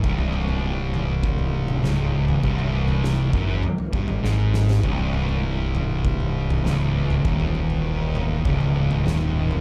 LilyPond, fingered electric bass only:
\new Staff \with { instrumentName = "Fingered electric bass" } { \clef bass \time 4/4 \key c \minor \tempo 4 = 100 c,,2. des,,4 | c,,4. fis,,8 r8 g,,8 aes,,4 | c,,2. des,,4 | ees,,2 des,,4 ees,,4 | }